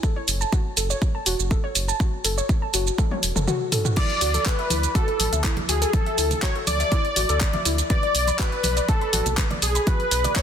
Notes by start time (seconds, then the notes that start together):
0.03 A4, kick, shaker
0.16 C#5
0.28 F#1, open hi-hat, shaker
0.41 A5, shaker
0.52 F#4, kick, shaker
0.77 F#1 A4, open hi-hat, shaker
0.90 C#5, shaker
1.02 kick, shaker
1.15 A5
1.26 E1 F#4, open hi-hat, shaker
1.39 F#1, shaker
1.51 A4, kick, shaker
1.64 C#5
1.75 F#1, open hi-hat, shaker
1.88 A5, shaker
2.00 F#4, kick, shaker
2.24 F#1 A4, open hi-hat, shaker
2.38 C#5, shaker
2.49 kick, shaker
2.62 A5
2.74 F#1 F#4, open hi-hat, shaker
2.87 shaker
2.98 A4, kick, high tom, shaker
3.11 C#5, high tom
3.23 E1, open hi-hat, shaker
3.36 F#1 A4, mid tom, shaker
3.47 F#4, mid tom, shaker
3.72 A4, mid tom, open hi-hat, shaker
3.85 F#4, mid tom, shaker
3.96 E4 D5, kick, closed hi-hat, crash, high conga, shaker
4.10 closed hi-hat
4.21 D2 F#4, open hi-hat, shaker
4.34 A4, closed hi-hat, high conga, shaker
4.46 B4, kick, clap, closed hi-hat, shaker
4.59 E5, closed hi-hat
4.70 D2 E4, open hi-hat, high conga, shaker
4.83 closed hi-hat, shaker
4.95 F#4 A4, kick, closed hi-hat, shaker
5.08 A4, closed hi-hat
5.20 A1, open hi-hat, high conga, shaker
5.33 D2 E5, closed hi-hat, low conga, shaker
5.44 E4, kick, clap, closed hi-hat, shaker
5.57 closed hi-hat, high conga, low conga
5.69 D2 F#4 G#4, open hi-hat, shaker
5.82 A4, closed hi-hat, shaker
5.93 A4, kick, closed hi-hat, high conga, shaker
6.06 E5, closed hi-hat
6.18 D2 E4, open hi-hat, shaker
6.31 closed hi-hat, high conga, low conga, shaker
6.42 F#4 C#5, kick, clap, closed hi-hat, shaker
6.55 A4, closed hi-hat
6.67 D2 D5, open hi-hat, high conga, shaker
6.80 E5, closed hi-hat, shaker
6.92 E4, kick, closed hi-hat, shaker
7.05 closed hi-hat
7.16 A1 F#4, open hi-hat, high conga, shaker
7.29 D2 A4, closed hi-hat, shaker
7.41 kick, clap, closed hi-hat, shaker
7.53 E5, closed hi-hat, high conga, low conga
7.65 D2 E4, open hi-hat, shaker
7.78 closed hi-hat, shaker
7.90 B4 D5, kick, closed hi-hat, high conga, shaker
8.03 D5, closed hi-hat
8.15 B1, open hi-hat, shaker
8.27 B5, closed hi-hat, high conga, shaker
8.39 F#4 B4, kick, clap, closed hi-hat, shaker
8.52 closed hi-hat
8.63 B1 B4, open hi-hat, high conga, shaker
8.77 D5, closed hi-hat, shaker
8.89 A4, kick, closed hi-hat, shaker
9.01 B5, closed hi-hat
9.13 A1 F#4, open hi-hat, high conga, shaker
9.26 B1, closed hi-hat, low conga, shaker
9.37 B4, kick, clap, closed hi-hat, shaker
9.51 D5, closed hi-hat, high conga, low conga
9.62 B1 G#4, open hi-hat, shaker
9.75 B5, closed hi-hat, shaker
9.87 F#4 B4, kick, closed hi-hat, high conga, shaker
10.00 closed hi-hat
10.11 B1 B4, open hi-hat, shaker
10.24 D5, closed hi-hat, high conga, low conga, shaker
10.36 C#5, kick, clap, closed hi-hat, shaker